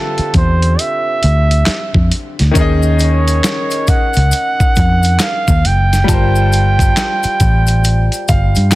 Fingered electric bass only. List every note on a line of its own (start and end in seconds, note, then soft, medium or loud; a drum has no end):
0.19 muted fingered electric bass stroke soft
0.35 0.75 E2 medium
1.24 1.64 D2 medium
1.68 muted fingered electric bass stroke soft
1.95 2.10 F2 medium
2.40 2.55 D2 medium
2.56 3.40 D#2 loud
3.89 muted fingered electric bass stroke soft
4.17 4.31 C#2 medium
4.77 5.17 F2 medium
5.48 5.63 D#2 medium
5.65 6.05 F#1 medium
6.09 6.93 G1 loud
7.25 muted fingered electric bass stroke soft
7.41 8.08 A1 medium
8.30 8.54 G1 medium
8.57 8.72 G2 medium